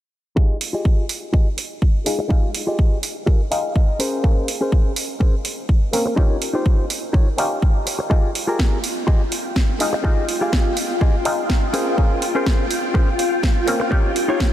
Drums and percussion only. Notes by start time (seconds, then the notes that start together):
0.37 kick
0.61 open hi-hat
0.85 kick
1.09 open hi-hat
1.34 kick
1.58 open hi-hat
1.82 kick
2.06 open hi-hat
2.30 kick
2.54 open hi-hat
2.79 kick
3.03 open hi-hat
3.27 kick
3.52 open hi-hat
3.76 kick
4.00 open hi-hat
4.24 kick
4.48 open hi-hat
4.72 kick
4.96 open hi-hat
5.21 kick
5.45 open hi-hat
5.69 kick
5.93 open hi-hat
6.17 kick
6.42 open hi-hat
6.66 kick
6.90 open hi-hat
7.14 kick
7.38 open hi-hat
7.62 kick
7.87 open hi-hat
8.11 kick
8.35 open hi-hat
8.59 kick, snare
8.84 open hi-hat
9.08 kick
9.32 open hi-hat
9.56 kick, snare
9.80 open hi-hat
10.04 kick
10.29 open hi-hat
10.53 kick, snare
10.77 open hi-hat
11.01 kick
11.25 open hi-hat
11.49 kick, snare
11.74 open hi-hat
11.98 kick
12.22 open hi-hat
12.46 kick, snare
12.71 open hi-hat
12.95 kick
13.19 open hi-hat
13.43 kick, snare
13.68 open hi-hat
13.92 kick
14.16 open hi-hat
14.40 kick, snare